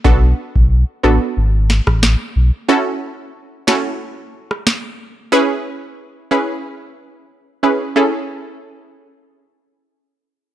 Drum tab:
SD |----------oro---|------o----ro---|----------------|----------------|
BD |o--o-------o----|----------------|----------------|----------------|